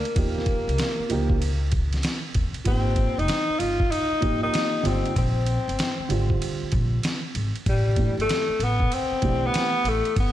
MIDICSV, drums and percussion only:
0, 0, Header, 1, 2, 480
1, 0, Start_track
1, 0, Tempo, 625000
1, 126, Time_signature, 4, 2, 24, 8
1, 7926, End_track
2, 0, Start_track
2, 0, Title_t, "Drums"
2, 40, Note_on_c, 9, 51, 38
2, 117, Note_off_c, 9, 51, 0
2, 123, Note_on_c, 9, 51, 74
2, 124, Note_on_c, 9, 36, 111
2, 200, Note_off_c, 9, 51, 0
2, 201, Note_off_c, 9, 36, 0
2, 295, Note_on_c, 9, 38, 32
2, 353, Note_on_c, 9, 51, 50
2, 357, Note_on_c, 9, 36, 89
2, 371, Note_off_c, 9, 38, 0
2, 430, Note_off_c, 9, 51, 0
2, 433, Note_off_c, 9, 36, 0
2, 530, Note_on_c, 9, 51, 41
2, 602, Note_off_c, 9, 51, 0
2, 602, Note_on_c, 9, 44, 51
2, 602, Note_on_c, 9, 51, 68
2, 611, Note_on_c, 9, 38, 109
2, 679, Note_off_c, 9, 44, 0
2, 679, Note_off_c, 9, 51, 0
2, 688, Note_off_c, 9, 38, 0
2, 843, Note_on_c, 9, 51, 60
2, 920, Note_off_c, 9, 51, 0
2, 996, Note_on_c, 9, 36, 83
2, 1073, Note_off_c, 9, 36, 0
2, 1088, Note_on_c, 9, 51, 75
2, 1165, Note_off_c, 9, 51, 0
2, 1318, Note_on_c, 9, 51, 55
2, 1324, Note_on_c, 9, 36, 88
2, 1394, Note_off_c, 9, 51, 0
2, 1401, Note_off_c, 9, 36, 0
2, 1479, Note_on_c, 9, 51, 46
2, 1490, Note_on_c, 9, 38, 39
2, 1556, Note_off_c, 9, 51, 0
2, 1560, Note_on_c, 9, 44, 58
2, 1560, Note_on_c, 9, 51, 83
2, 1567, Note_off_c, 9, 38, 0
2, 1571, Note_on_c, 9, 38, 104
2, 1637, Note_off_c, 9, 44, 0
2, 1637, Note_off_c, 9, 51, 0
2, 1648, Note_off_c, 9, 38, 0
2, 1801, Note_on_c, 9, 51, 57
2, 1806, Note_on_c, 9, 36, 86
2, 1878, Note_off_c, 9, 51, 0
2, 1883, Note_off_c, 9, 36, 0
2, 1954, Note_on_c, 9, 51, 37
2, 2031, Note_off_c, 9, 51, 0
2, 2038, Note_on_c, 9, 51, 75
2, 2042, Note_on_c, 9, 36, 112
2, 2115, Note_off_c, 9, 51, 0
2, 2119, Note_off_c, 9, 36, 0
2, 2273, Note_on_c, 9, 51, 55
2, 2276, Note_on_c, 9, 36, 80
2, 2350, Note_off_c, 9, 51, 0
2, 2353, Note_off_c, 9, 36, 0
2, 2452, Note_on_c, 9, 51, 36
2, 2521, Note_off_c, 9, 51, 0
2, 2521, Note_on_c, 9, 44, 49
2, 2521, Note_on_c, 9, 51, 73
2, 2530, Note_on_c, 9, 38, 100
2, 2598, Note_off_c, 9, 44, 0
2, 2598, Note_off_c, 9, 51, 0
2, 2607, Note_off_c, 9, 38, 0
2, 2765, Note_on_c, 9, 51, 65
2, 2841, Note_off_c, 9, 51, 0
2, 2917, Note_on_c, 9, 36, 84
2, 2994, Note_off_c, 9, 36, 0
2, 3011, Note_on_c, 9, 51, 66
2, 3088, Note_off_c, 9, 51, 0
2, 3242, Note_on_c, 9, 51, 53
2, 3246, Note_on_c, 9, 36, 89
2, 3319, Note_off_c, 9, 51, 0
2, 3323, Note_off_c, 9, 36, 0
2, 3484, Note_on_c, 9, 44, 57
2, 3484, Note_on_c, 9, 51, 81
2, 3495, Note_on_c, 9, 38, 116
2, 3561, Note_off_c, 9, 44, 0
2, 3561, Note_off_c, 9, 51, 0
2, 3572, Note_off_c, 9, 38, 0
2, 3725, Note_on_c, 9, 51, 62
2, 3802, Note_off_c, 9, 51, 0
2, 3882, Note_on_c, 9, 51, 32
2, 3959, Note_off_c, 9, 51, 0
2, 3965, Note_on_c, 9, 36, 109
2, 3965, Note_on_c, 9, 51, 76
2, 4041, Note_off_c, 9, 36, 0
2, 4042, Note_off_c, 9, 51, 0
2, 4197, Note_on_c, 9, 51, 51
2, 4273, Note_off_c, 9, 51, 0
2, 4372, Note_on_c, 9, 51, 42
2, 4445, Note_off_c, 9, 51, 0
2, 4445, Note_on_c, 9, 44, 54
2, 4445, Note_on_c, 9, 51, 64
2, 4454, Note_on_c, 9, 38, 112
2, 4522, Note_off_c, 9, 44, 0
2, 4522, Note_off_c, 9, 51, 0
2, 4531, Note_off_c, 9, 38, 0
2, 4684, Note_on_c, 9, 51, 60
2, 4761, Note_off_c, 9, 51, 0
2, 4838, Note_on_c, 9, 36, 86
2, 4915, Note_off_c, 9, 36, 0
2, 4929, Note_on_c, 9, 51, 69
2, 5006, Note_off_c, 9, 51, 0
2, 5158, Note_on_c, 9, 51, 52
2, 5165, Note_on_c, 9, 36, 86
2, 5235, Note_off_c, 9, 51, 0
2, 5242, Note_off_c, 9, 36, 0
2, 5402, Note_on_c, 9, 44, 62
2, 5402, Note_on_c, 9, 51, 73
2, 5413, Note_on_c, 9, 38, 108
2, 5479, Note_off_c, 9, 44, 0
2, 5479, Note_off_c, 9, 51, 0
2, 5490, Note_off_c, 9, 38, 0
2, 5645, Note_on_c, 9, 51, 60
2, 5721, Note_off_c, 9, 51, 0
2, 5802, Note_on_c, 9, 51, 34
2, 5879, Note_off_c, 9, 51, 0
2, 5885, Note_on_c, 9, 36, 120
2, 5885, Note_on_c, 9, 51, 82
2, 5962, Note_off_c, 9, 36, 0
2, 5962, Note_off_c, 9, 51, 0
2, 6116, Note_on_c, 9, 51, 54
2, 6118, Note_on_c, 9, 36, 85
2, 6193, Note_off_c, 9, 51, 0
2, 6195, Note_off_c, 9, 36, 0
2, 6297, Note_on_c, 9, 51, 40
2, 6369, Note_off_c, 9, 51, 0
2, 6369, Note_on_c, 9, 44, 55
2, 6369, Note_on_c, 9, 51, 71
2, 6378, Note_on_c, 9, 38, 105
2, 6446, Note_off_c, 9, 44, 0
2, 6446, Note_off_c, 9, 51, 0
2, 6455, Note_off_c, 9, 38, 0
2, 6607, Note_on_c, 9, 51, 58
2, 6684, Note_off_c, 9, 51, 0
2, 6759, Note_on_c, 9, 36, 75
2, 6836, Note_off_c, 9, 36, 0
2, 6848, Note_on_c, 9, 51, 67
2, 6925, Note_off_c, 9, 51, 0
2, 7081, Note_on_c, 9, 51, 50
2, 7087, Note_on_c, 9, 36, 87
2, 7158, Note_off_c, 9, 51, 0
2, 7164, Note_off_c, 9, 36, 0
2, 7327, Note_on_c, 9, 44, 61
2, 7327, Note_on_c, 9, 51, 84
2, 7338, Note_on_c, 9, 38, 103
2, 7404, Note_off_c, 9, 44, 0
2, 7404, Note_off_c, 9, 51, 0
2, 7415, Note_off_c, 9, 38, 0
2, 7567, Note_on_c, 9, 51, 59
2, 7644, Note_off_c, 9, 51, 0
2, 7721, Note_on_c, 9, 51, 35
2, 7798, Note_off_c, 9, 51, 0
2, 7806, Note_on_c, 9, 51, 78
2, 7807, Note_on_c, 9, 36, 120
2, 7883, Note_off_c, 9, 51, 0
2, 7884, Note_off_c, 9, 36, 0
2, 7926, End_track
0, 0, End_of_file